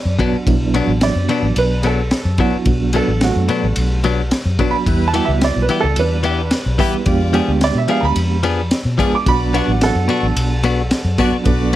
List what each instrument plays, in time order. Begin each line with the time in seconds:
Already playing: reed electric piano D5
0.05 fingered electric bass F#2
0.19 clean electric guitar B2 F#3 B3 D4, reed electric piano F#3 B3 D4 F#4 F#5, kick, ride
0.33 muted fingered electric bass stroke
0.47 fingered electric bass B1, reed electric piano F#3 B3 D4 E4, kick, ride
0.74 clean electric guitar B2 F#3 B3 D4, reed electric piano F#3 B3 D4 F#4, ride
0.87 fingered electric bass A1
1.01 upright piano D5, snare, ride
1.15 fingered electric bass F#2
1.29 clean electric guitar B2 F#3 B3 D4, ride
1.43 fingered electric bass A1
1.56 fingered electric bass B1, upright piano B4, ride
1.82 clean electric guitar B2 F#3 B3 D4, upright piano G#4, ride
1.87 upright piano A4
2.11 snare, ride
2.25 fingered electric bass F#2
2.38 clean electric guitar B2 F#3 B3 D4, reed electric piano F#3 B3 D4 E4, upright piano F#4, kick, ride
2.54 muted fingered electric bass stroke
2.65 fingered electric bass B1, reed electric piano F#3 B3 D4 F#4, kick, ride
2.93 clean electric guitar B2 F#3 B3 D4, reed electric piano F#3 B3 D4 A4, upright piano A4, ride
3.08 fingered electric bass A1
3.21 upright piano A3 F#4, snare, ride
3.36 fingered electric bass F#2
3.49 clean electric guitar B2 F#3 B3 D4, ride
3.63 fingered electric bass A1
3.76 fingered electric bass B1, ride
4.04 clean electric guitar B2 F#3 B3 D4, ride
4.31 snare, ride
4.45 fingered electric bass F#2
4.59 clean electric guitar B2 F#3 B3 D4, reed electric piano F#3 B3 D4 F#4, kick, ride
4.71 upright piano B5, muted fingered electric bass stroke
4.86 fingered electric bass E2, reed electric piano G3 B3 E4 G4, horn section E4 B4, kick, ride
5.08 upright piano A5
5.14 clean electric guitar E3 B3 E4 G4, reed electric piano G3 B3 E4 F#4, ride
5.25 fingered electric bass C#2, upright piano E5
5.41 upright piano D5, snare, ride
5.56 fingered electric bass B1
5.62 upright piano B4
5.69 clean electric guitar E3 B3 E4 G4, ride
5.81 fingered electric bass C#2, upright piano A4
5.96 fingered electric bass E2, upright piano D4 B4, ride
6.23 clean electric guitar E3 B3 E4 G4, ride
6.51 snare, ride
6.66 fingered electric bass B1
6.78 clean electric guitar E3 B3 E4 G4, reed electric piano G3 B3 E4 G4, horn section E4 G4 B4, kick, ride
6.93 muted fingered electric bass stroke
7.05 fingered electric bass F2, reed electric piano G#3 B3 D4 G4, horn section F4 D5, kick, ride
7.33 clean electric guitar F3 B3 D4 G#4, reed electric piano G#3 B3 D4 G4, ride
7.48 fingered electric bass D2
7.61 upright piano D5, snare, ride
7.75 fingered electric bass B2, upright piano E5
7.88 clean electric guitar F3 B3 D4 G#4, upright piano F5, ride
8.01 fingered electric bass D2, upright piano A#5
8.05 upright piano B5
8.16 fingered electric bass F2, ride
8.43 clean electric guitar F3 B3 D4 G#4, ride
8.71 snare, ride
8.85 fingered electric bass B2
8.98 clean electric guitar F3 B3 D4 G#4, reed electric piano G#3 B3 D4 G#4, horn section F4 G#4 D5, kick, ride
9.13 upright piano D6, muted fingered electric bass stroke
9.25 fingered electric bass B1, reed electric piano F#3 B3 D4 F#4, horn section F#4 B4 D5, upright piano B5, kick, ride
9.54 clean electric guitar B2 B3 D4 F#4, reed electric piano F#3 B3 D4 F#4, upright piano F#5, ride
9.68 fingered electric bass A1
9.81 upright piano A4 F#5, snare, ride
9.95 fingered electric bass F#2
10.08 clean electric guitar B2 B3 D4 F#4, ride
10.23 fingered electric bass A1
10.36 fingered electric bass B1, ride
10.63 clean electric guitar B2 B3 D4 F#4, ride
10.91 snare, ride
11.05 fingered electric bass F#2
11.16 clean electric guitar B2 B3 D4, reed electric piano F#3 B3 D4 F#4, horn section F#4 B4 D5, kick, ride
11.20 clean electric guitar F#4
11.32 muted fingered electric bass stroke
11.44 fingered electric bass B1, reed electric piano F#3 B3 D4 A4, horn section F#4 B4 D5, kick, ride